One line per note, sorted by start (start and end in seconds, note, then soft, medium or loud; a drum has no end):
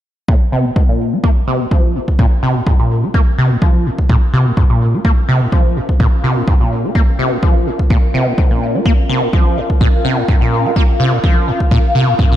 0.28 0.36 A#2 medium
0.28 12.37 C#4 medium
0.28 kick loud
0.43 12.37 F4 medium
0.52 0.67 C3 loud
0.65 0.71 A#2 medium
0.76 0.83 G#2 medium
0.76 12.37 A#4 medium
0.76 kick loud
0.89 1.14 A#2 medium
0.89 12.37 F5 medium
1.13 1.19 A#3 loud
1.24 1.31 A#3 loud
1.24 kick loud
1.47 1.62 C3 medium
1.60 1.66 A#2 medium
1.71 1.97 F3 medium
1.71 kick loud
1.95 1.99 G#2 loud
2.08 kick medium
2.19 2.26 A#2 medium
2.19 kick loud
2.43 2.57 C3 loud
2.56 2.62 A#2 medium
2.67 2.74 G#2 medium
2.67 kick loud
2.80 3.05 A#2 medium
3.03 3.09 A#3 loud
3.14 3.21 A#3 loud
3.14 kick loud
3.38 3.52 C3 loud
3.51 3.57 A#2 medium
3.62 3.87 F3 medium
3.62 kick loud
3.86 3.90 G#2 loud
3.99 kick medium
4.09 4.17 A#2 loud
4.09 kick loud
4.33 4.48 C3 medium
4.46 4.52 A#2 medium
4.57 4.64 G#2 medium
4.57 kick loud
4.70 4.95 A#2 medium
4.94 5.00 A#3 loud
5.05 5.12 A#3 loud
5.05 kick loud
5.29 5.43 C3 loud
5.41 5.47 A#2 medium
5.52 5.78 F3 medium
5.52 kick loud
5.76 5.80 G#2 medium
5.89 kick medium
6.00 6.07 A#2 medium
6.00 kick loud
6.24 6.38 C3 loud
6.37 6.43 A#2 medium
6.47 6.55 G#2 medium
6.47 kick loud
6.60 6.86 A#2 medium
6.84 6.90 A#3 loud
6.95 7.02 A#3 loud
6.95 kick loud
7.19 7.33 C3 loud
7.32 7.38 A#2 medium
7.43 7.68 F3 medium
7.43 kick loud
7.67 7.71 G#2 medium
7.79 kick medium
7.90 7.97 A#2 medium
7.90 kick loud
8.14 8.28 C3 medium
8.27 8.33 A#2 medium
8.38 8.45 G#2 medium
8.38 kick loud
8.51 8.76 A#2 medium
8.75 8.81 A#3 loud
8.86 8.93 A#3 loud
8.86 kick loud
9.09 9.24 C3 loud
9.22 9.28 A#2 medium
9.33 9.59 F3 medium
9.33 kick loud
9.57 9.61 G#2 loud
9.70 kick medium
9.81 9.88 A#2 loud
9.81 kick loud
10.05 10.19 C3 loud
10.18 10.24 A#2 medium
10.28 10.36 G#2 medium
10.28 kick loud
10.41 10.67 A#2 medium
10.65 10.71 A#3 loud
10.76 10.83 A#3 loud
10.76 kick loud
11.00 11.14 C3 loud
11.13 11.19 A#2 medium
11.24 11.49 F3 medium
11.24 kick loud
11.48 11.52 G#2 loud
11.60 kick medium
11.71 11.78 A#2 loud
11.71 kick loud
11.95 12.09 C3 medium
12.08 12.14 A#2 medium
12.19 12.26 G#2 medium
12.19 kick loud
12.32 12.37 A#2 medium